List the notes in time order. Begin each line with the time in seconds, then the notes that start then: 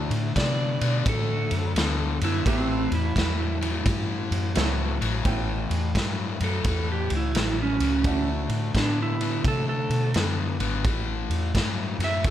Already playing: D3 A3 D4 E4 F#4
0.10 A2, ride
0.36 C3 D3 B3 D5, kick, snare, ride
0.81 B2 D3 B3, ride
1.06 A2 D3 A3 A4, kick, ride
1.51 F#2, ride
1.75 D2 D3 B3, snare, ride
2.21 F#2 D3 B3 E4, ride
2.46 A1 A2 E3 A3 C4 E4 G4 B4, kick, ride
2.92 E2 E4, ride
3.16 E2 A2 F#3, kick, snare, ride
3.61 A2 F#3, ride
3.85 G2 A2 E3, kick, ride
4.31 F#2, ride
4.55 C#2 A2 F#3 A3 B3 C#4 E4 A4, snare, ride
5.01 A1 A2 F#3, ride
5.25 A1 A2 E3 A3 B3 C#4 E4 G5, kick, ride
5.70 E2, ride
5.95 G2 A2 F#3, kick, snare, ride
6.40 F#2 A2 F#3 A4, ride
6.64 E2 A2 E3, kick, ride
6.92 G4
7.10 C#2, ride
7.17 E4
7.35 A1 A2 F#3, snare, ride
7.63 C#4
7.80 C#2 A2 F#3, ride
8.04 D2 D3 A3 D4 E4 F#4, kick, ride
8.49 A2, ride
8.75 A2 D3 B3 D4, kick, snare, ride
9.02 E4
9.21 D3 B3, ride
9.45 C3 D3 A3 A4, kick, ride
9.69 A4
9.90 B2, ride
10.14 F#2 D3 B3, snare, ride
10.60 G#1 D3 B3, ride
10.85 A1 A2 E3, kick, ride
11.30 E2, ride
11.55 G2 A2 F#3, kick, snare, ride
11.99 F#2 A2 F#3, snare, ride
12.04 E5
12.24 E2 A2 E3 A4, kick, ride